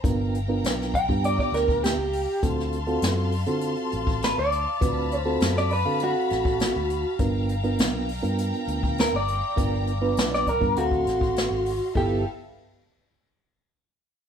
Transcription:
0.04 G1 B3 D4 F4 A#4 F5 G5 A#5, kick, closed hi-hat
0.35 closed hi-hat
0.48 B3 D4 F4 A#4
0.64 B1, snare, closed hi-hat
0.82 snare
0.94 G5, kick, closed hi-hat
1.09 G2 B3 D4 F4 G4, kick
1.24 D5, closed hi-hat
1.39 D5, kick
1.52 D2 A#4, snare, closed hi-hat
1.68 kick
1.84 G4, snare, closed hi-hat
1.97 C#2
2.13 open hi-hat
2.41 D2 C4 F4 F#4 A4 A5 C6, kick, closed hi-hat
2.60 snare
2.72 closed hi-hat
2.87 C4 F4 F#4 A4, closed hi-hat
3.02 F#2, snare, closed hi-hat
3.32 open hi-hat
3.46 D3 C4 F4 F#4 A4, closed hi-hat
3.61 closed hi-hat
3.76 closed hi-hat
3.92 A1, closed hi-hat
4.07 kick
4.22 B4, snare, closed hi-hat
4.38 D2 D5
4.52 closed hi-hat
4.79 D2 C4 F4 F#4 B4 B5, kick, closed hi-hat
5.11 closed hi-hat
5.18 C5
5.25 C4 F4 F#4 A4
5.40 F#2, snare, closed hi-hat
5.57 D5, snare
5.70 B4, open hi-hat
5.85 D3 C4 F#4 A4 F5
6.00 closed hi-hat
6.04 F#4
6.30 A1, snare, closed hi-hat
6.45 kick
6.60 snare, closed hi-hat
6.76 D2
6.90 closed hi-hat
7.18 G1 B3 D4 F4 A#4 G5 A#5, kick, closed hi-hat
7.49 closed hi-hat
7.63 B3 D4 F4 A#4, closed hi-hat
7.78 B1, snare, closed hi-hat
8.09 open hi-hat
8.23 G2 B3 D4 F4 A#4, closed hi-hat
8.38 closed hi-hat
8.53 closed hi-hat
8.68 D2, closed hi-hat
8.83 kick
8.98 A#4, snare, closed hi-hat
9.13 G1 D5
9.28 closed hi-hat
9.56 G1 B3 D4 F4 A#4, kick, closed hi-hat
9.87 closed hi-hat
10.02 B3 D4 F4 B4
10.17 B1, snare, closed hi-hat
10.34 D5, snare
10.47 A#4, kick, closed hi-hat
10.60 G2 B3 D4 F4 A#4, kick
10.76 D2 C4 F#4 A4 F5 C6, closed hi-hat
10.91 kick
11.06 A1, snare, closed hi-hat
11.21 kick
11.36 snare, closed hi-hat
11.50 G#1
11.66 open hi-hat
11.94 G1 B3 E4 F4 G4 A4 B4 E5 F5, kick

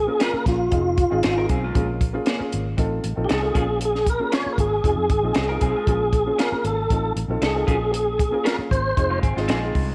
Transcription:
Already playing: G#4
0.07 A#3 C#4 F4 A#4
0.20 C#4 F4 G#4 A#4, snare, closed hi-hat
0.33 A#3 C#4 F4 G#4, muted fingered electric bass stroke
0.46 A#1 F4, kick, snare, closed hi-hat
0.71 F1 C4 D#4 F4 G#4, kick, closed hi-hat
0.98 kick, closed hi-hat
1.10 G#1 C4 D#4 F4 G#4
1.23 G#1 C4 D#4 G#4, snare, closed hi-hat
1.36 C4 D#4 F4 G#4 A#4
1.49 B1 C4 G#4, kick, closed hi-hat
1.64 G#3 F4
1.75 A#1 A#3 C#4 F4 G#4, kick, closed hi-hat
2.01 kick, closed hi-hat
2.13 A#3 C#4 F4 G#4
2.26 A#3 C#4 G#4, snare, closed hi-hat
2.38 A#3 C#4 F4 G#4, muted fingered electric bass stroke
2.53 G#1, closed hi-hat
2.77 A1 C4 D#4 F4 A4, kick, closed hi-hat
3.04 A1, closed hi-hat
3.16 A#1 C4 D#4 F4 A4
3.25 G4
3.29 C2 C4 D#4 A4, snare, closed hi-hat
3.33 G#4
3.41 C4 D#4 F4 A4
3.54 A#1 A#3 C4 C#4 F4 G#4, kick, closed hi-hat
3.61 C#4
3.81 closed hi-hat
3.85 G#4
3.95 snare
4.06 A#4, kick, closed hi-hat
4.19 A#3 C#4 F4 G#4
4.32 C#4 F4 G#4 C#5, snare, closed hi-hat
4.45 A#3 C#4 F4 G#4, muted fingered electric bass stroke
4.52 A#4
4.58 G#1 G#4, kick, closed hi-hat
4.84 F1 C4 D#4 F4 G#4, kick, closed hi-hat
4.96 F2
5.10 G#1, kick, closed hi-hat
5.23 A#1 C4 D#4 F4 G#4
5.34 C2 C4 D#4 G#4, snare, closed hi-hat
5.49 C4 D#4 F4 G#4 A#4
5.61 B1 C4 G#4, kick, closed hi-hat
5.75 G#3 F4
5.87 A#1 A#3 C#4 F4 G#4, kick, closed hi-hat
6.13 kick, closed hi-hat
6.26 A#3 C#4 F4 G#4
6.38 C#4 F4 G#4 A#4, snare, closed hi-hat
6.52 A#3 C#4 F4 G#4, muted fingered electric bass stroke
6.64 G#1 A4, closed hi-hat
6.90 A1 C4 D#4 F4 A4, kick, closed hi-hat
7.16 A1, closed hi-hat
7.28 A#1 C4 D#4 F4 A4
7.42 C2 C4 D#4 G#4 A4, snare, closed hi-hat
7.55 C4 D#4 F4 A4
7.67 A#1 A#3 C#4 F4 F#4 G#4, kick, closed hi-hat
7.75 G#4
7.93 G#4, closed hi-hat
8.19 kick, closed hi-hat
8.31 A#3 C#4 F4 A#4
8.44 C#4 F4 G#4 A#4, snare, closed hi-hat
8.57 A#3 C#4 F4 G#4, muted fingered electric bass stroke
8.71 G#1 C5, kick, closed hi-hat
8.97 F1 C4 D#4 F4 G#4, kick, closed hi-hat
9.10 G#3 F4
9.23 G#1 C4 G#4, kick, closed hi-hat
9.36 G#1 G#3 C4 D#4 F4 G#4, snare
9.48 A#1 C4 D#4 G#4, snare, closed hi-hat
9.62 C4 D#4 F4 G#4
9.75 C2, kick, open hi-hat

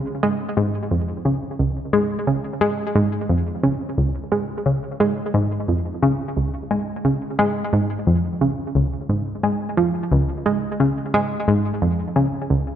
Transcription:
Already playing: C#3
0.23 G#3
0.57 G#2
0.91 F2
1.25 C#3
1.59 C#2
1.93 G#3
2.27 C#3
2.61 G#3
2.95 G#2
3.29 F2
3.63 C#3
3.98 C#2
4.32 G#3
4.66 C#3
5.00 G#3
5.34 G#2
5.68 F2
6.02 C#3
6.37 C#2
6.71 G#3
7.05 C#3
7.39 G#3
7.73 G#2
8.07 F2
8.41 C#3
8.75 C#2
9.09 G#2
9.43 G#3
9.77 F3
10.12 C#2
10.46 G#3
10.80 C#3
11.14 G#3
11.48 G#2
11.82 F2
12.16 C#3
12.50 C#2

